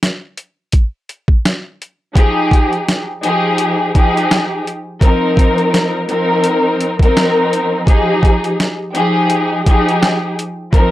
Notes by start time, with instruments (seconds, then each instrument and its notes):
0.03 snare, closed hi-hat
0.37 closed hi-hat
0.72 kick, closed hi-hat
1.09 closed hi-hat
1.28 kick
1.45 snare, closed hi-hat
1.82 closed hi-hat
2.14 string section F3 D#4 G4 G#4, kick, closed hi-hat
2.51 kick, closed hi-hat
2.73 closed hi-hat
2.89 snare, closed hi-hat
3.22 string section F3 D#4 G4 G#4, closed hi-hat
3.58 closed hi-hat
3.94 string section F3 D#4 G4 G#4, kick, closed hi-hat
4.17 closed hi-hat
4.31 snare, closed hi-hat
4.67 closed hi-hat
5.01 string section F3 C4 D#4 A#4, kick, closed hi-hat
5.37 kick, closed hi-hat
5.58 closed hi-hat
5.74 snare, closed hi-hat
6.08 string section F3 C4 D#4 A#4, closed hi-hat
6.44 closed hi-hat
6.81 closed hi-hat
6.99 string section F3 C4 D#4 A#4, kick, closed hi-hat
7.17 snare, closed hi-hat
7.53 closed hi-hat
7.85 string section F3 D#4 G4 G#4, kick, closed hi-hat
8.23 kick, closed hi-hat
8.44 closed hi-hat
8.60 snare, closed hi-hat
8.93 string section F3 D#4 G4 G#4, closed hi-hat
9.30 closed hi-hat
9.65 string section F3 D#4 G4 G#4, kick, closed hi-hat
9.89 closed hi-hat
10.03 snare, closed hi-hat
10.39 closed hi-hat
10.73 string section F3 C4 D#4 A#4, kick, closed hi-hat